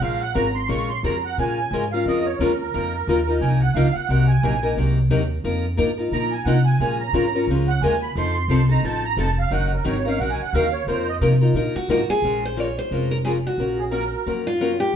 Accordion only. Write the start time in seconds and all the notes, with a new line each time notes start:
0.02 F5
0.21 F#5
0.35 A#5
0.55 C6
0.69 C#6
0.90 C6
1.05 A#5
1.25 F#5
1.39 G#5
1.92 F5
2.07 D#5
2.26 C#5
2.39 A#4
2.61 A#4
3.41 G#5
3.61 F#5
3.74 F5
3.93 F#5
4.28 G#5
6.12 A#5
6.32 G#5
6.45 F#5
6.65 G#5
7.01 A#5
7.68 F#5
7.82 G#5
8.03 B5
8.17 C6
8.70 A#5
8.85 A5
9.05 A#5
9.19 A5
9.39 F5
9.53 F#5
9.73 A#4
9.87 C#5
10.06 F5
10.20 F#5
10.31 G#5
10.42 F#5
10.54 F5
10.73 C#5
10.88 C5
11.09 D#5
13.78 G#4
13.91 A#4